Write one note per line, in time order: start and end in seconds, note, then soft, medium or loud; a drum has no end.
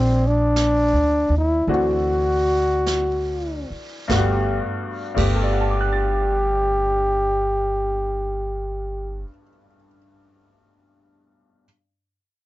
0.00 0.89 A#1 medium
0.00 1.67 F3 medium
0.00 1.68 A#3 soft
0.00 0.29 C4 medium
0.00 1.67 C4 soft
0.00 1.67 D4 soft
0.00 1.70 G#4 medium
0.27 1.35 D4 medium
0.56 brush sweep soft
0.56 snare soft
0.56 hi-hat pedal soft
0.93 1.28 D2 soft
1.29 1.65 D#2 medium
1.38 1.69 E4 medium
1.67 3.66 D2 medium
1.67 4.09 E3 soft
1.67 4.08 A3 soft
1.67 4.10 C4 soft
1.67 4.10 D4 soft
1.67 4.09 F#4 medium
1.67 brush sweep soft
1.74 3.69 F#4 medium
2.86 brush sweep soft
2.86 snare soft
2.86 hi-hat pedal soft
3.70 muted upright bass stroke soft
4.08 4.58 G1 medium
4.08 4.61 G2 medium
4.08 4.62 G3 soft
4.08 4.62 A3 medium
4.08 4.62 B3 medium
4.08 4.63 F#4 medium
4.08 kick soft
4.08 snare medium
4.15 4.61 G4 medium
5.15 9.22 G1 medium
5.15 9.24 G2 medium
5.15 9.25 G3 soft
5.15 9.26 A3 soft
5.15 9.27 B3 soft
5.15 9.28 G4 medium
5.15 kick soft
5.15 crash medium
5.21 9.27 G4 medium
5.36 9.41 A4 soft
5.43 9.49 D5 soft
5.51 9.57 F#5 soft
5.61 9.66 A5 soft
5.71 9.76 D6 soft
5.81 9.87 F#6 soft
5.92 9.98 A6 soft